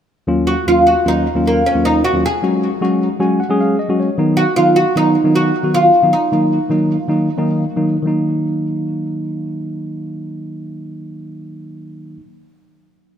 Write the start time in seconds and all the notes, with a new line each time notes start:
0.27 D#2 F#3 A#3 C#4 F4
0.47 F#4
0.67 D#2 F#3 A#3 C#4 F4
0.87 F#4
1.05 D#2 F#3 A#3 C#4 D#4 F4
1.35 D#2 F#3 A#3 C#4 F4
1.47 A#3
1.66 C#4
1.75 D#2 F#3 A#3 C#4 F4
1.85 D#4
2.04 F#4
2.14 D#2 F#3 A#3 C#4 F4
2.26 G#4
2.42 F#3 G#3 C#4 F#4
2.81 F#3 G#3 C#4 F#4
3.20 F#3 G#3 C#4 F#4 G#5
3.40 F#5
3.49 F#3 G#3 C#4 G#4
3.61 F5
3.79 D#5
3.89 F#3 G#3 C#4 F#4
4.00 C#5
4.18 D#3 F#3 B3 D#4
4.37 F#4
4.56 D#3 F#3 B3 D#4 F4
4.76 F#4
4.96 D#3 F#3 B3 D#4
5.24 D#3 F#3 B3 D#4
5.36 F#4
5.63 D#3 F#3 B3 F#4
5.74 F4
6.02 D#3 F#3 B3 D#4
6.13 D#4
6.32 D#3 F#3 A#3 D#4
6.70 D#3 F#3 A#3 D#4
7.08 D#3 F#3 A#3 D#4
7.38 D#3 F#3 A#3 D#4
7.77 D#3 F#3 A#3 D#4
8.03 D#3 F#3 A#3
8.07 D#4